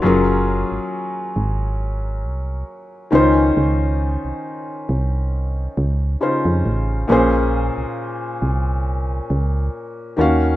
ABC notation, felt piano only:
X:1
M:4/4
L:1/8
Q:"Swing 16ths" 1/4=68
K:Bbm
V:1 name="Felt piano"
[G,DFAB]6- [G,DFAB] [E,DEFc]- | [E,DEFc]6 [D,DEFc]2 | [B,,B,DAc]6- [B,,B,DAc] [E,B,DGf] |]